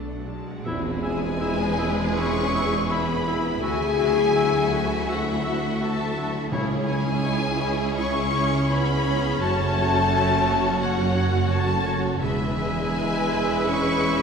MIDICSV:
0, 0, Header, 1, 13, 480
1, 0, Start_track
1, 0, Tempo, 752823
1, 420, Time_signature, 4, 2, 24, 8
1, 1853, Tempo, 719424
1, 4733, Tempo, 751880
1, 5213, Tempo, 703400
1, 7613, Tempo, 722892
1, 9425, End_track
2, 0, Start_track
2, 0, Title_t, "Flute section"
2, 0, Program_c, 0, 73
2, 655, Note_on_c, 0, 80, 99
2, 1356, Note_off_c, 0, 80, 0
2, 1379, Note_on_c, 0, 85, 124
2, 1852, Note_off_c, 0, 85, 0
2, 1854, Note_on_c, 0, 83, 95
2, 2335, Note_off_c, 0, 83, 0
2, 2335, Note_on_c, 0, 80, 115
2, 3301, Note_off_c, 0, 80, 0
2, 3305, Note_on_c, 0, 78, 86
2, 3786, Note_off_c, 0, 78, 0
2, 3790, Note_on_c, 0, 81, 100
2, 4261, Note_off_c, 0, 81, 0
2, 4497, Note_on_c, 0, 80, 92
2, 5188, Note_off_c, 0, 80, 0
2, 5218, Note_on_c, 0, 85, 120
2, 5703, Note_off_c, 0, 85, 0
2, 5706, Note_on_c, 0, 83, 115
2, 6183, Note_on_c, 0, 81, 122
2, 6189, Note_off_c, 0, 83, 0
2, 7117, Note_off_c, 0, 81, 0
2, 7138, Note_on_c, 0, 78, 102
2, 7613, Note_off_c, 0, 78, 0
2, 7615, Note_on_c, 0, 81, 105
2, 8089, Note_off_c, 0, 81, 0
2, 8330, Note_on_c, 0, 80, 92
2, 9032, Note_off_c, 0, 80, 0
2, 9057, Note_on_c, 0, 85, 119
2, 9425, Note_off_c, 0, 85, 0
2, 9425, End_track
3, 0, Start_track
3, 0, Title_t, "Violin section"
3, 0, Program_c, 1, 48
3, 52, Note_on_c, 1, 78, 48
3, 177, Note_off_c, 1, 78, 0
3, 178, Note_on_c, 1, 81, 49
3, 300, Note_off_c, 1, 81, 0
3, 304, Note_on_c, 1, 78, 49
3, 421, Note_off_c, 1, 78, 0
3, 655, Note_on_c, 1, 80, 103
3, 1356, Note_off_c, 1, 80, 0
3, 1379, Note_on_c, 1, 85, 110
3, 1852, Note_off_c, 1, 85, 0
3, 1857, Note_on_c, 1, 83, 98
3, 2331, Note_on_c, 1, 80, 126
3, 2336, Note_off_c, 1, 83, 0
3, 3279, Note_off_c, 1, 80, 0
3, 3312, Note_on_c, 1, 78, 96
3, 3789, Note_off_c, 1, 78, 0
3, 3791, Note_on_c, 1, 81, 101
3, 4262, Note_off_c, 1, 81, 0
3, 4492, Note_on_c, 1, 80, 122
3, 5186, Note_off_c, 1, 80, 0
3, 5216, Note_on_c, 1, 85, 106
3, 5702, Note_off_c, 1, 85, 0
3, 5706, Note_on_c, 1, 83, 112
3, 6189, Note_off_c, 1, 83, 0
3, 6195, Note_on_c, 1, 81, 127
3, 7124, Note_off_c, 1, 81, 0
3, 7138, Note_on_c, 1, 78, 116
3, 7603, Note_off_c, 1, 78, 0
3, 7615, Note_on_c, 1, 81, 118
3, 8089, Note_off_c, 1, 81, 0
3, 8328, Note_on_c, 1, 80, 117
3, 9030, Note_off_c, 1, 80, 0
3, 9063, Note_on_c, 1, 85, 125
3, 9425, Note_off_c, 1, 85, 0
3, 9425, End_track
4, 0, Start_track
4, 0, Title_t, "Oboe"
4, 0, Program_c, 2, 68
4, 416, Note_on_c, 2, 76, 74
4, 518, Note_off_c, 2, 76, 0
4, 653, Note_on_c, 2, 76, 67
4, 755, Note_off_c, 2, 76, 0
4, 894, Note_on_c, 2, 76, 83
4, 996, Note_off_c, 2, 76, 0
4, 1138, Note_on_c, 2, 76, 65
4, 1240, Note_off_c, 2, 76, 0
4, 1378, Note_on_c, 2, 76, 72
4, 1480, Note_off_c, 2, 76, 0
4, 1621, Note_on_c, 2, 76, 74
4, 1723, Note_off_c, 2, 76, 0
4, 1851, Note_on_c, 2, 76, 73
4, 1958, Note_off_c, 2, 76, 0
4, 2096, Note_on_c, 2, 76, 66
4, 2203, Note_off_c, 2, 76, 0
4, 2335, Note_on_c, 2, 76, 79
4, 2442, Note_off_c, 2, 76, 0
4, 2576, Note_on_c, 2, 76, 72
4, 2683, Note_off_c, 2, 76, 0
4, 2820, Note_on_c, 2, 76, 84
4, 2927, Note_off_c, 2, 76, 0
4, 3065, Note_on_c, 2, 76, 62
4, 3172, Note_off_c, 2, 76, 0
4, 3308, Note_on_c, 2, 76, 75
4, 3414, Note_off_c, 2, 76, 0
4, 3542, Note_on_c, 2, 76, 76
4, 3649, Note_off_c, 2, 76, 0
4, 3787, Note_on_c, 2, 76, 71
4, 3894, Note_off_c, 2, 76, 0
4, 4030, Note_on_c, 2, 76, 66
4, 4135, Note_off_c, 2, 76, 0
4, 4264, Note_on_c, 2, 73, 80
4, 4368, Note_off_c, 2, 73, 0
4, 4501, Note_on_c, 2, 73, 66
4, 4607, Note_off_c, 2, 73, 0
4, 4736, Note_on_c, 2, 73, 75
4, 4838, Note_off_c, 2, 73, 0
4, 4979, Note_on_c, 2, 73, 58
4, 5081, Note_off_c, 2, 73, 0
4, 5226, Note_on_c, 2, 73, 70
4, 5334, Note_off_c, 2, 73, 0
4, 5468, Note_on_c, 2, 73, 71
4, 5575, Note_off_c, 2, 73, 0
4, 5706, Note_on_c, 2, 73, 74
4, 5814, Note_off_c, 2, 73, 0
4, 5949, Note_on_c, 2, 73, 75
4, 6057, Note_off_c, 2, 73, 0
4, 6195, Note_on_c, 2, 73, 76
4, 6302, Note_off_c, 2, 73, 0
4, 6435, Note_on_c, 2, 73, 77
4, 6541, Note_off_c, 2, 73, 0
4, 6673, Note_on_c, 2, 73, 77
4, 6778, Note_off_c, 2, 73, 0
4, 6908, Note_on_c, 2, 73, 63
4, 7012, Note_off_c, 2, 73, 0
4, 7146, Note_on_c, 2, 73, 74
4, 7250, Note_off_c, 2, 73, 0
4, 7378, Note_on_c, 2, 73, 75
4, 7484, Note_off_c, 2, 73, 0
4, 7617, Note_on_c, 2, 73, 79
4, 7723, Note_off_c, 2, 73, 0
4, 7853, Note_on_c, 2, 73, 75
4, 7959, Note_off_c, 2, 73, 0
4, 8092, Note_on_c, 2, 76, 99
4, 9425, Note_off_c, 2, 76, 0
4, 9425, End_track
5, 0, Start_track
5, 0, Title_t, "Violin section"
5, 0, Program_c, 3, 48
5, 0, Note_on_c, 3, 74, 83
5, 151, Note_off_c, 3, 74, 0
5, 417, Note_on_c, 3, 68, 94
5, 417, Note_on_c, 3, 71, 94
5, 2306, Note_off_c, 3, 68, 0
5, 2306, Note_off_c, 3, 71, 0
5, 2336, Note_on_c, 3, 76, 89
5, 2338, Note_on_c, 3, 66, 84
5, 4233, Note_off_c, 3, 66, 0
5, 4233, Note_off_c, 3, 76, 0
5, 4254, Note_on_c, 3, 73, 102
5, 4255, Note_on_c, 3, 68, 90
5, 6157, Note_off_c, 3, 68, 0
5, 6195, Note_on_c, 3, 66, 90
5, 8059, Note_off_c, 3, 73, 0
5, 8066, Note_off_c, 3, 66, 0
5, 8100, Note_on_c, 3, 76, 98
5, 8102, Note_on_c, 3, 71, 96
5, 9425, Note_off_c, 3, 71, 0
5, 9425, Note_off_c, 3, 76, 0
5, 9425, End_track
6, 0, Start_track
6, 0, Title_t, "Clarinet"
6, 0, Program_c, 4, 71
6, 429, Note_on_c, 4, 64, 87
6, 531, Note_off_c, 4, 64, 0
6, 663, Note_on_c, 4, 64, 72
6, 765, Note_off_c, 4, 64, 0
6, 892, Note_on_c, 4, 64, 68
6, 994, Note_off_c, 4, 64, 0
6, 1132, Note_on_c, 4, 64, 66
6, 1234, Note_off_c, 4, 64, 0
6, 1388, Note_on_c, 4, 64, 73
6, 1490, Note_off_c, 4, 64, 0
6, 1628, Note_on_c, 4, 64, 76
6, 1730, Note_off_c, 4, 64, 0
6, 1852, Note_on_c, 4, 64, 84
6, 1959, Note_off_c, 4, 64, 0
6, 2097, Note_on_c, 4, 64, 74
6, 2204, Note_off_c, 4, 64, 0
6, 2329, Note_on_c, 4, 66, 80
6, 2436, Note_off_c, 4, 66, 0
6, 2574, Note_on_c, 4, 66, 74
6, 2681, Note_off_c, 4, 66, 0
6, 2814, Note_on_c, 4, 66, 62
6, 2921, Note_off_c, 4, 66, 0
6, 3061, Note_on_c, 4, 66, 73
6, 3168, Note_off_c, 4, 66, 0
6, 3299, Note_on_c, 4, 66, 75
6, 3406, Note_off_c, 4, 66, 0
6, 3545, Note_on_c, 4, 66, 77
6, 3652, Note_off_c, 4, 66, 0
6, 3791, Note_on_c, 4, 66, 82
6, 3897, Note_off_c, 4, 66, 0
6, 4031, Note_on_c, 4, 66, 69
6, 4135, Note_off_c, 4, 66, 0
6, 4263, Note_on_c, 4, 64, 77
6, 4368, Note_off_c, 4, 64, 0
6, 4509, Note_on_c, 4, 64, 81
6, 4612, Note_off_c, 4, 64, 0
6, 4740, Note_on_c, 4, 64, 73
6, 4842, Note_off_c, 4, 64, 0
6, 4979, Note_on_c, 4, 64, 69
6, 5081, Note_off_c, 4, 64, 0
6, 5216, Note_on_c, 4, 64, 77
6, 5325, Note_off_c, 4, 64, 0
6, 5470, Note_on_c, 4, 64, 71
6, 5576, Note_off_c, 4, 64, 0
6, 5704, Note_on_c, 4, 64, 73
6, 5812, Note_off_c, 4, 64, 0
6, 5951, Note_on_c, 4, 64, 70
6, 6058, Note_off_c, 4, 64, 0
6, 6188, Note_on_c, 4, 66, 81
6, 6296, Note_off_c, 4, 66, 0
6, 6439, Note_on_c, 4, 66, 77
6, 6544, Note_off_c, 4, 66, 0
6, 6677, Note_on_c, 4, 66, 70
6, 6781, Note_off_c, 4, 66, 0
6, 6919, Note_on_c, 4, 66, 69
6, 7021, Note_off_c, 4, 66, 0
6, 7143, Note_on_c, 4, 66, 85
6, 7248, Note_off_c, 4, 66, 0
6, 7383, Note_on_c, 4, 66, 77
6, 7489, Note_off_c, 4, 66, 0
6, 7618, Note_on_c, 4, 66, 86
6, 7723, Note_off_c, 4, 66, 0
6, 7854, Note_on_c, 4, 66, 75
6, 7960, Note_off_c, 4, 66, 0
6, 8090, Note_on_c, 4, 64, 88
6, 9425, Note_off_c, 4, 64, 0
6, 9425, End_track
7, 0, Start_track
7, 0, Title_t, "Harp"
7, 0, Program_c, 5, 46
7, 0, Note_on_c, 5, 47, 60
7, 0, Note_on_c, 5, 54, 55
7, 0, Note_on_c, 5, 57, 53
7, 0, Note_on_c, 5, 66, 49
7, 380, Note_off_c, 5, 47, 0
7, 395, Note_off_c, 5, 54, 0
7, 409, Note_off_c, 5, 57, 0
7, 420, Note_on_c, 5, 52, 84
7, 423, Note_off_c, 5, 66, 0
7, 535, Note_on_c, 5, 56, 57
7, 654, Note_on_c, 5, 59, 67
7, 773, Note_on_c, 5, 64, 63
7, 892, Note_on_c, 5, 68, 77
7, 1012, Note_on_c, 5, 71, 73
7, 1136, Note_on_c, 5, 76, 67
7, 1373, Note_off_c, 5, 76, 0
7, 1500, Note_on_c, 5, 80, 70
7, 1624, Note_on_c, 5, 76, 74
7, 1732, Note_off_c, 5, 71, 0
7, 1739, Note_on_c, 5, 71, 73
7, 1850, Note_off_c, 5, 68, 0
7, 1858, Note_on_c, 5, 68, 76
7, 1963, Note_off_c, 5, 59, 0
7, 1971, Note_on_c, 5, 59, 60
7, 2085, Note_off_c, 5, 56, 0
7, 2093, Note_on_c, 5, 56, 57
7, 2211, Note_off_c, 5, 59, 0
7, 2219, Note_on_c, 5, 59, 52
7, 2338, Note_on_c, 5, 50, 89
7, 2352, Note_off_c, 5, 80, 0
7, 2353, Note_off_c, 5, 56, 0
7, 2354, Note_off_c, 5, 52, 0
7, 2354, Note_off_c, 5, 71, 0
7, 2355, Note_off_c, 5, 68, 0
7, 2356, Note_off_c, 5, 59, 0
7, 2459, Note_on_c, 5, 62, 56
7, 2580, Note_on_c, 5, 54, 68
7, 2687, Note_off_c, 5, 64, 0
7, 2695, Note_on_c, 5, 64, 63
7, 2813, Note_off_c, 5, 54, 0
7, 2821, Note_on_c, 5, 54, 79
7, 3052, Note_off_c, 5, 76, 0
7, 3060, Note_on_c, 5, 76, 69
7, 3187, Note_on_c, 5, 66, 65
7, 3293, Note_off_c, 5, 76, 0
7, 3301, Note_on_c, 5, 76, 77
7, 3413, Note_off_c, 5, 66, 0
7, 3421, Note_on_c, 5, 66, 66
7, 3533, Note_off_c, 5, 76, 0
7, 3541, Note_on_c, 5, 76, 66
7, 3656, Note_off_c, 5, 66, 0
7, 3664, Note_on_c, 5, 66, 63
7, 3780, Note_off_c, 5, 64, 0
7, 3788, Note_on_c, 5, 64, 72
7, 3899, Note_off_c, 5, 54, 0
7, 3907, Note_on_c, 5, 54, 58
7, 4022, Note_off_c, 5, 62, 0
7, 4030, Note_on_c, 5, 62, 60
7, 4138, Note_off_c, 5, 54, 0
7, 4146, Note_on_c, 5, 54, 56
7, 4258, Note_on_c, 5, 49, 91
7, 4277, Note_off_c, 5, 66, 0
7, 4279, Note_off_c, 5, 50, 0
7, 4280, Note_off_c, 5, 54, 0
7, 4281, Note_off_c, 5, 62, 0
7, 4376, Note_on_c, 5, 56, 53
7, 4492, Note_on_c, 5, 61, 76
7, 4607, Note_off_c, 5, 64, 0
7, 4615, Note_on_c, 5, 64, 61
7, 4733, Note_on_c, 5, 68, 76
7, 4849, Note_on_c, 5, 73, 73
7, 4965, Note_off_c, 5, 76, 0
7, 4973, Note_on_c, 5, 76, 69
7, 5207, Note_off_c, 5, 76, 0
7, 5341, Note_on_c, 5, 80, 75
7, 5459, Note_on_c, 5, 76, 69
7, 5571, Note_off_c, 5, 73, 0
7, 5579, Note_on_c, 5, 73, 72
7, 5695, Note_off_c, 5, 68, 0
7, 5703, Note_on_c, 5, 68, 83
7, 5821, Note_off_c, 5, 61, 0
7, 5829, Note_on_c, 5, 61, 63
7, 5938, Note_off_c, 5, 56, 0
7, 5946, Note_on_c, 5, 56, 69
7, 6061, Note_off_c, 5, 61, 0
7, 6069, Note_on_c, 5, 61, 55
7, 6189, Note_on_c, 5, 42, 93
7, 6205, Note_off_c, 5, 49, 0
7, 6206, Note_off_c, 5, 76, 0
7, 6207, Note_off_c, 5, 56, 0
7, 6207, Note_off_c, 5, 64, 0
7, 6207, Note_off_c, 5, 68, 0
7, 6208, Note_off_c, 5, 80, 0
7, 6310, Note_on_c, 5, 49, 66
7, 6428, Note_on_c, 5, 54, 70
7, 6538, Note_off_c, 5, 61, 0
7, 6546, Note_on_c, 5, 61, 60
7, 6667, Note_on_c, 5, 66, 76
7, 6777, Note_off_c, 5, 61, 0
7, 6786, Note_on_c, 5, 61, 84
7, 6897, Note_off_c, 5, 73, 0
7, 6906, Note_on_c, 5, 73, 80
7, 7137, Note_off_c, 5, 73, 0
7, 7145, Note_on_c, 5, 73, 85
7, 7371, Note_off_c, 5, 73, 0
7, 7487, Note_off_c, 5, 66, 0
7, 7609, Note_off_c, 5, 61, 0
7, 7724, Note_off_c, 5, 54, 0
7, 7732, Note_on_c, 5, 54, 62
7, 7846, Note_off_c, 5, 49, 0
7, 7854, Note_on_c, 5, 49, 60
7, 7966, Note_off_c, 5, 54, 0
7, 7974, Note_on_c, 5, 54, 59
7, 8089, Note_on_c, 5, 52, 90
7, 8108, Note_off_c, 5, 42, 0
7, 8109, Note_off_c, 5, 49, 0
7, 8110, Note_off_c, 5, 54, 0
7, 8210, Note_on_c, 5, 56, 59
7, 8443, Note_on_c, 5, 71, 64
7, 8678, Note_on_c, 5, 76, 82
7, 8805, Note_on_c, 5, 83, 72
7, 9053, Note_off_c, 5, 83, 0
7, 9061, Note_on_c, 5, 83, 83
7, 9290, Note_off_c, 5, 83, 0
7, 9409, Note_off_c, 5, 76, 0
7, 9425, Note_off_c, 5, 52, 0
7, 9425, Note_off_c, 5, 56, 0
7, 9425, Note_off_c, 5, 71, 0
7, 9425, End_track
8, 0, Start_track
8, 0, Title_t, "Viola section"
8, 0, Program_c, 6, 48
8, 0, Note_on_c, 6, 57, 63
8, 177, Note_off_c, 6, 57, 0
8, 181, Note_on_c, 6, 56, 58
8, 411, Note_off_c, 6, 56, 0
8, 416, Note_on_c, 6, 64, 88
8, 418, Note_on_c, 6, 56, 94
8, 2307, Note_off_c, 6, 56, 0
8, 2333, Note_on_c, 6, 57, 84
8, 4230, Note_off_c, 6, 64, 0
8, 4231, Note_off_c, 6, 57, 0
8, 4265, Note_on_c, 6, 61, 82
8, 4267, Note_on_c, 6, 64, 91
8, 6163, Note_off_c, 6, 64, 0
8, 6191, Note_on_c, 6, 66, 89
8, 8064, Note_off_c, 6, 66, 0
8, 8088, Note_on_c, 6, 68, 82
8, 8091, Note_off_c, 6, 61, 0
8, 8091, Note_on_c, 6, 56, 92
8, 9425, Note_off_c, 6, 56, 0
8, 9425, Note_off_c, 6, 68, 0
8, 9425, End_track
9, 0, Start_track
9, 0, Title_t, "French horn section"
9, 0, Program_c, 7, 60
9, 647, Note_on_c, 7, 56, 118
9, 1352, Note_off_c, 7, 56, 0
9, 1381, Note_on_c, 7, 61, 101
9, 1844, Note_off_c, 7, 61, 0
9, 1854, Note_on_c, 7, 59, 90
9, 2323, Note_on_c, 7, 68, 127
9, 2335, Note_off_c, 7, 59, 0
9, 3275, Note_off_c, 7, 68, 0
9, 3302, Note_on_c, 7, 54, 77
9, 3775, Note_off_c, 7, 54, 0
9, 3785, Note_on_c, 7, 57, 76
9, 4259, Note_off_c, 7, 57, 0
9, 4498, Note_on_c, 7, 56, 101
9, 5189, Note_off_c, 7, 56, 0
9, 5218, Note_on_c, 7, 61, 110
9, 5703, Note_off_c, 7, 61, 0
9, 5707, Note_on_c, 7, 59, 98
9, 6183, Note_on_c, 7, 57, 127
9, 6189, Note_off_c, 7, 59, 0
9, 7118, Note_off_c, 7, 57, 0
9, 7130, Note_on_c, 7, 54, 97
9, 7605, Note_on_c, 7, 57, 91
9, 7609, Note_off_c, 7, 54, 0
9, 8084, Note_off_c, 7, 57, 0
9, 8318, Note_on_c, 7, 56, 109
9, 9026, Note_off_c, 7, 56, 0
9, 9048, Note_on_c, 7, 61, 116
9, 9425, Note_off_c, 7, 61, 0
9, 9425, End_track
10, 0, Start_track
10, 0, Title_t, "Timpani"
10, 0, Program_c, 8, 47
10, 4262, Note_on_c, 8, 49, 105
10, 4947, Note_off_c, 8, 49, 0
10, 9425, End_track
11, 0, Start_track
11, 0, Title_t, "Cello section"
11, 0, Program_c, 10, 48
11, 0, Note_on_c, 10, 62, 75
11, 179, Note_off_c, 10, 62, 0
11, 424, Note_on_c, 10, 40, 83
11, 2310, Note_off_c, 10, 40, 0
11, 2336, Note_on_c, 10, 38, 78
11, 4259, Note_off_c, 10, 38, 0
11, 4263, Note_on_c, 10, 37, 83
11, 6161, Note_off_c, 10, 37, 0
11, 6186, Note_on_c, 10, 42, 92
11, 8062, Note_off_c, 10, 42, 0
11, 8086, Note_on_c, 10, 40, 83
11, 9425, Note_off_c, 10, 40, 0
11, 9425, End_track
12, 0, Start_track
12, 0, Title_t, "Double bass section"
12, 0, Program_c, 11, 48
12, 0, Note_on_c, 11, 35, 69
12, 367, Note_off_c, 11, 35, 0
12, 423, Note_on_c, 11, 28, 91
12, 2309, Note_off_c, 11, 28, 0
12, 2338, Note_on_c, 11, 38, 85
12, 4260, Note_off_c, 11, 38, 0
12, 4265, Note_on_c, 11, 37, 98
12, 6162, Note_off_c, 11, 37, 0
12, 6189, Note_on_c, 11, 30, 99
12, 8063, Note_off_c, 11, 30, 0
12, 8088, Note_on_c, 11, 28, 101
12, 9425, Note_off_c, 11, 28, 0
12, 9425, End_track
13, 0, Start_track
13, 0, Title_t, "Tam-tam"
13, 422, Note_on_c, 9, 52, 63
13, 486, Note_off_c, 9, 52, 0
13, 9425, End_track
0, 0, End_of_file